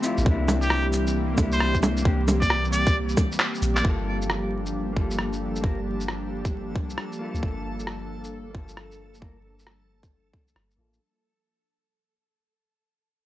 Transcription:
0.00 0.22 D3 medium
0.00 0.22 F3 medium
0.00 0.22 A3 medium
0.00 3.80 C4 medium
0.00 0.22 C4 loud
0.00 3.80 G4 medium
0.00 cabasa medium
0.04 0.24 E4 medium
0.04 0.25 F4 loud
0.18 0.25 A1 loud
0.18 shaker medium
0.22 1.37 C2 loud
0.22 3.81 E3 medium
0.22 3.81 G3 medium
0.22 1.33 A#3 medium
0.22 3.81 A#3 medium
0.22 1.36 D4 medium
0.22 kick loud
0.30 1.38 E4 loud
0.48 low bongo medium
0.48 cabasa medium
0.62 0.86 G4 medium
0.62 shaker medium
0.70 cross-stick loud
0.93 cabasa medium
1.07 shaker medium
1.34 2.04 C2 medium
1.34 2.01 A#3 medium
1.34 kick loud
1.34 low bongo medium
1.34 cabasa medium
1.38 2.03 D4 medium
1.38 2.05 E4 medium
1.52 1.76 C5 medium
1.52 shaker medium
1.60 cross-stick loud
1.75 kick medium
1.75 shaker soft
1.83 low bongo medium
1.83 cabasa medium
1.97 shaker medium
2.02 3.16 C2 loud
2.02 2.19 A#3 medium
2.02 2.20 D4 medium
2.02 kick loud
2.07 2.21 G4 medium
2.28 low bongo medium
2.28 cabasa medium
2.41 2.65 D5 loud
2.41 kick medium
2.41 shaker medium
2.50 cross-stick loud
2.65 shaker soft
2.72 2.96 D5 loud
2.72 cabasa medium
2.87 kick loud
2.87 shaker medium
3.09 shaker soft
3.17 kick loud
3.17 low bongo medium
3.17 cabasa medium
3.32 shaker medium
3.40 cross-stick loud
3.40 clap loud
3.55 shaker soft
3.62 3.83 A#1 loud
3.62 cabasa medium
3.75 3.84 D5 medium
3.75 clap medium
3.75 shaker medium
3.81 10.96 F3 medium
3.81 10.96 G3 medium
3.81 4.92 A#3 medium
3.81 10.96 A#3 medium
3.81 10.96 D4 medium
3.81 7.39 G4 medium
3.81 11.01 A4 medium
3.81 kick loud
3.86 4.95 F4 medium
3.86 4.97 A4 medium
4.22 shaker medium
4.30 cross-stick loud
4.66 shaker medium
4.93 5.62 G1 medium
4.93 5.60 A#3 medium
4.93 kick loud
4.97 5.62 F4 medium
4.97 5.64 A4 medium
5.11 shaker medium
5.19 cross-stick loud
5.33 shaker soft
5.56 shaker medium
5.61 6.77 G1 loud
5.61 5.77 A#3 medium
5.61 5.78 F4 medium
5.61 5.79 A#4 medium
5.61 kick loud
6.00 shaker medium
6.08 cross-stick loud
6.45 kick loud
6.45 shaker medium
6.75 6.96 C2 medium
6.75 kick loud
6.90 shaker medium
6.98 cross-stick loud
7.12 shaker soft
7.19 7.37 A#3 medium
7.19 7.41 F4 medium
7.23 7.42 A4 loud
7.34 7.42 D2 medium
7.34 shaker medium
7.39 8.49 A#3 medium
7.39 8.52 F4 medium
7.39 10.97 A4 medium
7.43 8.54 G1 medium
7.43 kick loud
7.47 8.55 A4 medium
7.79 shaker medium
7.87 cross-stick loud
8.24 shaker medium
8.51 9.18 A#3 medium
8.51 9.19 F4 medium
8.55 9.21 G1 medium
8.55 9.21 A4 medium
8.55 kick loud
8.69 shaker medium
8.77 cross-stick loud
8.92 shaker soft
9.14 shaker medium
9.20 10.35 G1 medium
9.20 9.36 A#3 medium
9.20 9.37 F4 medium
9.20 9.38 A#4 medium
9.20 kick loud
9.59 shaker soft
9.67 cross-stick loud
10.03 kick loud
10.03 shaker soft
10.34 10.55 C2 medium
10.34 kick loud
10.48 shaker soft
10.55 10.77 G1 medium
10.55 cross-stick loud
10.71 shaker soft
10.77 10.99 A1 medium
10.77 10.98 A#3 medium
10.77 10.99 F4 medium
10.81 11.00 A4 medium
10.93 shaker soft

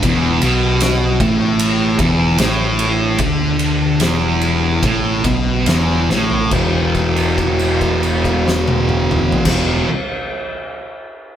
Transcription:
0.02 0.39 E1 medium
0.02 0.41 E2 loud
0.02 kick loud
0.02 ride medium
0.42 1.16 B1 loud
0.42 1.20 B2 loud
0.42 ride medium
0.81 snare loud
0.81 ride loud
1.20 1.95 A1 medium
1.20 1.98 A2 loud
1.20 kick loud
1.20 ride medium
1.59 ride loud
1.98 2.36 E1 medium
1.98 2.38 E2 medium
1.98 kick loud
1.98 ride medium
2.38 3.15 A1 loud
2.38 3.18 A2 loud
2.38 snare loud
2.38 ride loud
2.79 ride medium
3.19 3.96 D2 medium
3.19 4.00 D3 medium
3.19 kick loud
3.19 ride medium
3.59 ride medium
4.00 4.79 E1 medium
4.00 4.83 E2 loud
4.00 snare loud
4.00 ride medium
4.42 ride medium
4.83 5.22 A1 medium
4.83 5.24 A2 medium
4.83 kick loud
4.83 ride medium
5.24 5.64 B1 medium
5.24 5.66 B2 medium
5.24 kick loud
5.24 ride medium
5.66 6.06 E1 medium
5.66 6.09 E2 loud
5.66 snare loud
5.66 ride medium
6.09 6.49 A1 medium
6.09 6.52 A2 loud
6.09 snare medium
6.30 floor tom medium
6.51 9.31 E1 medium
6.51 9.45 E2 medium
6.51 9.47 B2 medium
6.51 kick loud
6.51 crash loud
6.56 9.49 E3 loud
6.95 kick medium
6.95 crash soft
7.16 crash soft
7.38 kick medium
7.38 crash soft
7.59 crash soft
7.81 kick medium
7.81 crash soft
8.03 crash soft
8.24 kick medium
8.24 crash soft
8.48 snare medium
8.68 high tom loud
8.89 mid tom medium
9.11 mid tom medium
9.32 floor tom loud
9.45 9.82 E1 medium
9.45 9.85 E2 medium
9.45 9.86 B2 medium
9.45 kick loud
9.45 snare loud
9.45 crash loud
9.49 9.87 E3 loud

